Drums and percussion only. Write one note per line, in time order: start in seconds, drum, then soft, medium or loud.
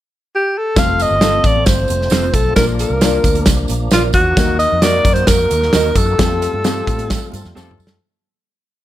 0.76 kick loud
0.76 snare loud
0.76 closed hi-hat medium
0.76 tambourine medium
0.76 low conga medium
0.89 high conga medium
0.99 closed hi-hat medium
0.99 tambourine medium
0.99 muted conga soft
1.11 high conga soft
1.21 snare loud
1.21 closed hi-hat medium
1.21 tambourine medium
1.44 kick medium
1.44 closed hi-hat medium
1.44 tambourine medium
1.44 low conga medium
1.56 high conga medium
1.66 kick medium
1.66 snare loud
1.66 closed hi-hat medium
1.66 tambourine loud
1.88 closed hi-hat medium
1.88 tambourine medium
1.88 muted conga soft
1.88 high conga medium
2.02 snare soft
2.10 snare loud
2.10 closed hi-hat medium
2.10 tambourine medium
2.23 high conga medium
2.34 kick medium
2.34 closed hi-hat medium
2.34 tambourine medium
2.34 muted conga soft
2.34 high conga medium
2.34 low conga medium
2.56 kick loud
2.56 snare loud
2.56 closed hi-hat medium
2.56 tambourine medium
2.56 muted conga soft
2.56 low conga medium
2.69 high conga medium
2.79 closed hi-hat medium
2.79 tambourine medium
2.91 high conga soft
3.01 snare loud
3.01 closed hi-hat medium
3.01 tambourine medium
3.24 kick medium
3.24 closed hi-hat medium
3.24 tambourine medium
3.24 muted conga soft
3.24 low conga medium
3.35 closed hi-hat soft
3.35 high conga medium
3.46 kick loud
3.46 snare loud
3.46 closed hi-hat medium
3.46 tambourine loud
3.68 closed hi-hat medium
3.68 tambourine medium
3.68 high conga medium
3.91 snare loud
3.91 closed hi-hat medium
3.91 tambourine medium
4.04 high conga medium
4.13 kick medium
4.13 closed hi-hat medium
4.13 tambourine medium
4.13 high conga medium
4.13 low conga medium
4.37 kick loud
4.37 snare loud
4.37 closed hi-hat medium
4.37 tambourine medium
4.37 muted conga soft
4.37 low conga medium
4.48 high conga medium
4.59 closed hi-hat medium
4.59 tambourine medium
4.71 high conga soft
4.82 snare loud
4.82 closed hi-hat medium
4.82 tambourine medium
5.05 kick medium
5.05 closed hi-hat medium
5.05 tambourine medium
5.05 low conga medium
5.16 closed hi-hat medium
5.16 high conga medium
5.27 kick loud
5.27 snare loud
5.27 closed hi-hat loud
5.27 tambourine loud
5.50 closed hi-hat medium
5.50 tambourine medium
5.50 high conga medium
5.62 snare soft
5.73 snare loud
5.73 closed hi-hat medium
5.73 tambourine medium
5.86 high conga medium
5.95 kick medium
5.95 closed hi-hat medium
5.95 tambourine medium
5.95 muted conga soft
5.95 high conga medium
5.95 low conga medium
6.19 kick loud
6.19 snare loud
6.19 closed hi-hat medium
6.19 tambourine medium
6.19 low conga medium
6.30 high conga medium
6.42 closed hi-hat medium
6.42 tambourine medium
6.42 muted conga soft
6.54 high conga soft
6.64 snare loud
6.64 closed hi-hat medium
6.64 tambourine medium
6.87 kick medium
6.87 closed hi-hat medium
6.87 tambourine medium
6.87 muted conga soft
6.87 low conga medium
6.98 closed hi-hat medium
6.98 high conga medium
7.10 kick loud
7.10 snare loud
7.10 closed hi-hat medium
7.10 tambourine loud
7.32 closed hi-hat medium
7.32 tambourine medium
7.32 muted conga soft
7.32 high conga medium
7.45 snare soft
7.54 snare medium
7.54 tambourine medium
7.54 muted conga soft
7.67 high conga medium
7.71 mid tom medium
7.78 tambourine medium
7.78 muted conga soft
7.78 high conga medium
7.78 low conga medium
7.87 snare loud